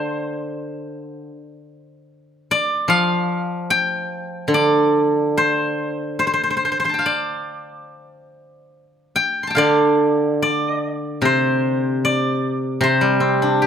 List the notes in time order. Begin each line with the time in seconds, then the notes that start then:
Already playing: D3 C5 D5 F5
2.51 D5
2.88 F3 F5
3.70 G5
4.48 D3
4.54 D5
5.38 C5
6.19 C5
6.27 C5
6.33 C5
6.43 C5
6.50 C5
6.57 C5
6.65 C5
6.72 C5
6.80 C5
6.84 C5 C6
6.89 A5
6.94 G5
6.99 F5
7.06 D5
9.16 G5
9.43 C6
9.47 G5 A5
9.55 D3 D5 F5
10.42 D5
11.22 C3 C5
12.05 D5
12.81 C3 C5
13.01 G3
13.20 C4
13.42 D4
13.62 G4